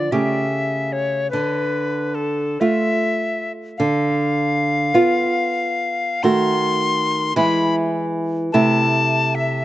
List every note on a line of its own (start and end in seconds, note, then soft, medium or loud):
0.00 0.13 D5 medium
0.12 1.29 C#3 soft
0.12 1.28 A3 soft
0.12 1.29 G4 soft
0.12 0.94 E5 medium
0.93 1.30 C#5 medium
1.30 2.57 D3 soft
1.30 2.16 B4 medium
2.15 2.62 A4 medium
2.60 3.75 A3 soft
2.60 3.76 F4 soft
2.60 3.52 E5 medium
3.78 4.92 D3 medium
3.78 6.25 F5 medium
4.94 6.19 B3 soft
4.94 6.19 F4 soft
6.23 7.35 D#3 medium
6.23 7.34 A3 soft
6.23 7.35 F#4 soft
6.23 7.36 C6 medium
7.36 8.50 E3 medium
7.36 8.49 G#3 medium
7.36 8.50 E4 soft
7.36 7.75 B5 medium
8.52 9.65 C3 medium
8.52 9.65 A3 soft
8.52 9.65 E4 soft
8.52 9.36 A5 medium
9.35 9.65 E5 medium